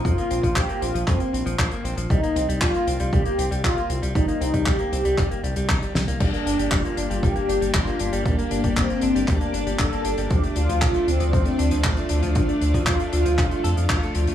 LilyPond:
<<
  \new Staff \with { instrumentName = "Analog polysynth" } { \time 4/4 \key g \minor \tempo 4 = 117 f'4 g'8 f'8 c'4 r4 | ees'4 f'4 g'4 f'8. r16 | ees'4 g'8 g'4. r4 | d'4 f'4 g'4 f'8. r16 |
bes4 c'4 d'4 a'4 | g'8 f'4 c'2 r8 | d'4 f'8 f'4. r4 | }
  \new Staff \with { instrumentName = "String machine" } { \time 4/4 \key g \minor << { r1 | r1 | r1 | <d' d''>1~ |
<d' d''>1~ | <d' d''>1~ | <d' d''>1 | } \\ { r1 | r1 | r1 | <bes g'>1~ |
<bes g'>1 | <a f'>1~ | <a f'>1 | } >> }
  \new Staff \with { instrumentName = "Clean electric guitar" } { \clef bass \time 4/4 \key g \minor f16 bes16 c'16 f16 f16 bes16 c'16 f16 f16 bes16 c'16 f16 f16 bes16 c'16 f16 | g16 bes16 c'16 g16 g16 bes16 c'16 g16 g16 bes16 c'16 g16 g16 bes16 c'16 g16 | g16 bes16 c'16 g16 g16 bes16 c'16 g16 g16 bes16 g16 g16 ees'16 g16 g16 bes16 | g16 bes16 d'16 g16 g16 bes16 d'16 g16 g16 bes16 d'16 g16 g16 bes16 d'16 g16 |
g16 bes16 d'16 g16 g16 bes16 d'16 g16 g16 bes16 d'16 g16 g16 bes16 d'16 g16 | f16 a16 d'16 f16 f16 a16 d'16 f16 f16 a16 d'16 f16 f16 a16 d'16 f16 | f16 a16 d'16 f16 f16 a16 d'16 f16 f16 a16 a'16 f16 f''16 a'16 f16 a16 | }
  \new Staff \with { instrumentName = "Analog synth bass" } { \clef bass \time 4/4 \key g \minor f,16 r16 bes,,16 bes,,16 bes,,16 r16 bes,,16 bes,,16 f,16 r16 bes,,16 bes,,16 bes,,16 r16 bes,,16 bes,,16 | c,16 r16 c,16 c,16 bes,,16 r16 c,16 c,16 c,16 r16 c,16 c,16 c,16 r16 c,16 c,16 | g,,16 r16 c,16 c,16 c,16 r16 c,16 c,16 g,,16 r16 c,16 c,16 c,16 r16 c,16 c,16 | g,,16 r16 g,,16 g,,16 f,,16 r16 g,,16 g,,16 g,,16 r16 g,,16 g,,16 g,,16 r16 g,,16 g,,16 |
d,16 r16 g,,16 g,,16 g,,16 r16 g,,16 g,,16 d,16 r16 g,,16 g,,16 g,,16 r16 g,,16 g,,16 | d,16 r16 d,16 d,16 c,16 r16 d,16 d,16 d,16 r16 d,16 d,16 d,16 r16 d,16 d,16 | a,,16 r16 d,16 d,16 d,16 r16 d,16 d,16 a,,16 r16 f,16 f,16 d,16 r16 d,16 d,16 | }
  \new DrumStaff \with { instrumentName = "Drums" } \drummode { \time 4/4 <hh bd>16 hh16 hh16 <hh bd>16 <hc hh bd>16 hh16 hh16 hh16 <hc hh bd>16 hh16 hh16 hh16 <hc hh bd>16 hh16 hh16 hh16 | <hh bd>16 hh16 hh16 hh16 <hc hh bd>16 hh16 hh16 hh16 <hh bd>16 hh16 hh16 hh16 <hc hh bd>16 hh16 hh16 hh16 | <hh bd>16 hh16 hh16 <hh bd>16 <hc hh bd>16 hh16 hh16 hh16 <hc hh bd>16 hh16 hh16 hh16 <hc hh bd>16 hh16 <hh sn>16 hh16 | <cymc hh bd>16 hh16 hh16 hh16 <hc hh bd>16 hh16 hh16 hh16 <hh bd>16 hh16 hh16 hh16 <hc hh bd>16 hh16 hh16 hh16 |
<hh bd>16 hh16 hh16 <hh bd>16 <hc hh bd>16 hh16 hh16 hh16 <hc hh bd>16 hh16 hh16 hh16 <hc hh bd>16 hh16 hh16 hh16 | <hh bd>16 hh16 hh16 hh16 <hc hh bd>16 hh16 hh16 hh16 <hh bd>16 hh16 hh16 hh16 <hc hh bd>16 hh16 hh16 hh16 | <hh bd>16 hh16 hh16 <hh bd>16 <hc hh bd>16 hh16 hh16 hh16 <hc hh bd>16 hh16 hh16 hh16 <hc hh bd>16 hh16 hh16 hh16 | }
>>